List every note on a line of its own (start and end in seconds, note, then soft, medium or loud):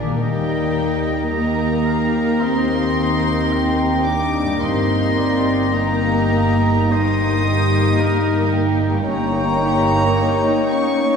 0.00 0.18 A#1 soft
0.00 0.17 A#2 soft
0.00 3.92 D#3 soft
0.00 0.18 A#3 soft
0.00 0.18 D4 medium
0.00 0.17 G#4 soft
0.00 0.17 A#4 soft
0.00 0.20 D5 soft
0.07 3.97 A#3 soft
0.11 4.01 D#4 soft
0.16 4.06 A#4 soft
0.20 4.58 D#2 soft
0.20 4.59 D#2 soft
0.20 1.28 G3 medium
0.20 1.30 A#3 soft
0.20 4.58 D#4 soft
0.20 1.30 D#4 soft
0.20 1.30 G4 soft
0.20 1.30 A#4 soft
0.20 1.29 D#5 medium
0.20 1.28 G5 medium
0.20 4.59 A#6 soft
1.30 4.58 A#3 medium
1.30 2.41 A#3 medium
1.30 4.58 D#4 medium
1.30 4.58 G4 medium
1.30 4.58 A#4 medium
1.30 1.87 D#5 medium
1.30 2.42 A#5 medium
1.86 2.44 F5 soft
2.42 4.06 C4 medium
2.42 3.54 D#5 medium
2.42 4.07 C6 medium
3.53 4.35 G5 medium
4.05 4.61 D4 medium
4.05 4.61 D6 medium
4.43 8.33 G2 soft
4.47 8.37 A#3 soft
4.52 8.42 D#4 soft
4.57 8.47 A#4 soft
4.61 9.08 G1 medium
4.61 9.07 G2 medium
4.61 5.72 A#3 medium
4.61 5.72 C4 medium
4.61 5.72 D#4 medium
4.61 8.77 D#4 soft
4.61 5.72 G4 soft
4.61 5.71 A#4 soft
4.61 5.20 D#5 medium
4.61 5.74 C6 medium
4.61 8.78 A#6 medium
5.18 5.75 D5 medium
5.72 6.92 A#3 medium
5.72 6.90 A#3 medium
5.72 6.90 D#4 medium
5.72 6.89 G4 medium
5.72 6.88 A#4 medium
5.72 6.93 D#5 medium
5.72 6.92 A#5 medium
6.91 9.05 A#3 medium
6.91 8.54 D#4 medium
6.91 9.05 D#4 medium
6.91 9.04 G4 medium
6.91 9.05 A#4 medium
6.91 8.01 C5 medium
6.91 8.54 D#6 medium
8.00 8.51 A#4 medium
8.51 10.94 G5 medium
8.90 11.16 G2 soft
8.95 11.16 C#4 soft
8.99 11.16 D#4 soft
9.03 11.16 A#4 soft
9.08 10.01 G1 medium
9.08 10.00 G2 medium
9.08 11.16 A#3 medium
9.08 10.68 A#3 medium
9.08 9.34 C#4 soft
9.08 11.16 D#4 medium
9.08 11.16 C#5 medium
9.08 10.68 A#5 medium
9.08 11.16 C#6 medium
9.35 9.64 D#4 soft
9.65 9.92 G4 medium
9.94 10.20 A#4 medium
10.21 10.47 G4 medium
10.48 10.74 D#4 soft
10.71 11.16 C#4 medium
10.71 11.00 C#4 soft
10.71 11.16 C#6 medium
11.01 11.16 D#4 soft